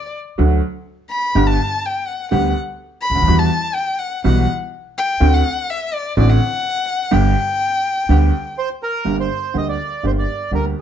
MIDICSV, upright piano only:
0, 0, Header, 1, 2, 480
1, 0, Start_track
1, 0, Key_signature, 1, "major"
1, 0, Tempo, 482703
1, 1348, Time_signature, 4, 2, 24, 8
1, 10751, End_track
2, 0, Start_track
2, 0, Title_t, "Upright piano"
2, 0, Program_c, 0, 0
2, 377, Note_on_c, 0, 50, 73
2, 377, Note_on_c, 0, 54, 55
2, 378, Note_on_c, 0, 66, 70
2, 380, Note_on_c, 0, 57, 57
2, 383, Note_on_c, 0, 38, 76
2, 584, Note_off_c, 0, 54, 0
2, 585, Note_off_c, 0, 66, 0
2, 586, Note_off_c, 0, 50, 0
2, 586, Note_off_c, 0, 57, 0
2, 587, Note_off_c, 0, 38, 0
2, 1341, Note_on_c, 0, 50, 66
2, 1342, Note_on_c, 0, 55, 61
2, 1344, Note_on_c, 0, 59, 64
2, 1346, Note_on_c, 0, 43, 76
2, 1349, Note_on_c, 0, 31, 74
2, 1349, Note_on_c, 0, 67, 71
2, 1546, Note_off_c, 0, 50, 0
2, 1546, Note_off_c, 0, 55, 0
2, 1547, Note_off_c, 0, 59, 0
2, 1549, Note_off_c, 0, 43, 0
2, 1550, Note_off_c, 0, 31, 0
2, 1550, Note_off_c, 0, 67, 0
2, 2298, Note_on_c, 0, 50, 77
2, 2303, Note_on_c, 0, 55, 60
2, 2303, Note_on_c, 0, 59, 61
2, 2304, Note_on_c, 0, 38, 74
2, 2305, Note_on_c, 0, 67, 70
2, 2506, Note_off_c, 0, 38, 0
2, 2506, Note_off_c, 0, 50, 0
2, 2506, Note_off_c, 0, 55, 0
2, 2506, Note_off_c, 0, 59, 0
2, 2507, Note_off_c, 0, 67, 0
2, 3090, Note_on_c, 0, 37, 45
2, 3135, Note_on_c, 0, 38, 57
2, 3147, Note_off_c, 0, 37, 0
2, 3199, Note_off_c, 0, 38, 0
2, 3203, Note_on_c, 0, 39, 69
2, 3253, Note_on_c, 0, 40, 76
2, 3256, Note_on_c, 0, 52, 78
2, 3257, Note_on_c, 0, 59, 63
2, 3258, Note_on_c, 0, 55, 61
2, 3261, Note_on_c, 0, 66, 77
2, 3263, Note_off_c, 0, 39, 0
2, 3459, Note_off_c, 0, 40, 0
2, 3461, Note_off_c, 0, 55, 0
2, 3461, Note_off_c, 0, 59, 0
2, 3462, Note_off_c, 0, 52, 0
2, 3463, Note_off_c, 0, 66, 0
2, 4218, Note_on_c, 0, 52, 63
2, 4219, Note_on_c, 0, 35, 76
2, 4220, Note_on_c, 0, 55, 63
2, 4223, Note_on_c, 0, 66, 74
2, 4224, Note_on_c, 0, 47, 82
2, 4224, Note_on_c, 0, 59, 63
2, 4419, Note_off_c, 0, 52, 0
2, 4420, Note_off_c, 0, 35, 0
2, 4420, Note_off_c, 0, 55, 0
2, 4422, Note_off_c, 0, 47, 0
2, 4422, Note_off_c, 0, 59, 0
2, 4422, Note_off_c, 0, 66, 0
2, 5172, Note_on_c, 0, 60, 62
2, 5174, Note_on_c, 0, 57, 65
2, 5175, Note_on_c, 0, 38, 85
2, 5176, Note_on_c, 0, 50, 85
2, 5180, Note_on_c, 0, 66, 80
2, 5373, Note_off_c, 0, 60, 0
2, 5374, Note_off_c, 0, 57, 0
2, 5375, Note_off_c, 0, 38, 0
2, 5376, Note_off_c, 0, 50, 0
2, 5377, Note_off_c, 0, 66, 0
2, 6134, Note_on_c, 0, 33, 80
2, 6134, Note_on_c, 0, 66, 74
2, 6136, Note_on_c, 0, 45, 82
2, 6136, Note_on_c, 0, 60, 63
2, 6138, Note_on_c, 0, 50, 67
2, 6138, Note_on_c, 0, 57, 59
2, 6332, Note_off_c, 0, 66, 0
2, 6333, Note_off_c, 0, 33, 0
2, 6333, Note_off_c, 0, 45, 0
2, 6333, Note_off_c, 0, 60, 0
2, 6334, Note_off_c, 0, 50, 0
2, 6334, Note_off_c, 0, 57, 0
2, 7071, Note_on_c, 0, 50, 66
2, 7071, Note_on_c, 0, 55, 65
2, 7072, Note_on_c, 0, 43, 82
2, 7074, Note_on_c, 0, 59, 63
2, 7074, Note_on_c, 0, 67, 74
2, 7077, Note_on_c, 0, 31, 82
2, 7280, Note_off_c, 0, 50, 0
2, 7280, Note_off_c, 0, 55, 0
2, 7281, Note_off_c, 0, 43, 0
2, 7281, Note_off_c, 0, 59, 0
2, 7281, Note_off_c, 0, 67, 0
2, 7283, Note_off_c, 0, 31, 0
2, 8044, Note_on_c, 0, 50, 78
2, 8046, Note_on_c, 0, 55, 59
2, 8049, Note_on_c, 0, 59, 61
2, 8052, Note_on_c, 0, 38, 80
2, 8054, Note_on_c, 0, 67, 71
2, 8248, Note_off_c, 0, 50, 0
2, 8249, Note_off_c, 0, 55, 0
2, 8250, Note_off_c, 0, 59, 0
2, 8252, Note_off_c, 0, 38, 0
2, 8253, Note_off_c, 0, 67, 0
2, 8997, Note_on_c, 0, 43, 54
2, 8998, Note_on_c, 0, 31, 55
2, 8998, Note_on_c, 0, 50, 46
2, 8999, Note_on_c, 0, 58, 40
2, 9000, Note_on_c, 0, 55, 42
2, 9002, Note_on_c, 0, 67, 47
2, 9209, Note_off_c, 0, 31, 0
2, 9209, Note_off_c, 0, 43, 0
2, 9209, Note_off_c, 0, 50, 0
2, 9210, Note_off_c, 0, 55, 0
2, 9210, Note_off_c, 0, 58, 0
2, 9211, Note_off_c, 0, 67, 0
2, 9484, Note_on_c, 0, 50, 53
2, 9488, Note_on_c, 0, 38, 56
2, 9488, Note_on_c, 0, 58, 40
2, 9489, Note_on_c, 0, 55, 40
2, 9489, Note_on_c, 0, 67, 50
2, 9696, Note_off_c, 0, 38, 0
2, 9696, Note_off_c, 0, 58, 0
2, 9697, Note_off_c, 0, 55, 0
2, 9697, Note_off_c, 0, 67, 0
2, 9699, Note_off_c, 0, 50, 0
2, 9976, Note_on_c, 0, 50, 43
2, 9977, Note_on_c, 0, 55, 40
2, 9979, Note_on_c, 0, 58, 42
2, 9980, Note_on_c, 0, 31, 50
2, 9980, Note_on_c, 0, 43, 50
2, 9985, Note_on_c, 0, 67, 48
2, 10183, Note_off_c, 0, 50, 0
2, 10183, Note_off_c, 0, 55, 0
2, 10184, Note_off_c, 0, 58, 0
2, 10185, Note_off_c, 0, 31, 0
2, 10185, Note_off_c, 0, 43, 0
2, 10187, Note_off_c, 0, 67, 0
2, 10455, Note_on_c, 0, 50, 52
2, 10460, Note_on_c, 0, 58, 42
2, 10462, Note_on_c, 0, 55, 43
2, 10464, Note_on_c, 0, 38, 53
2, 10465, Note_on_c, 0, 67, 55
2, 10666, Note_off_c, 0, 58, 0
2, 10667, Note_off_c, 0, 55, 0
2, 10669, Note_off_c, 0, 38, 0
2, 10669, Note_off_c, 0, 50, 0
2, 10669, Note_off_c, 0, 67, 0
2, 10751, End_track
0, 0, End_of_file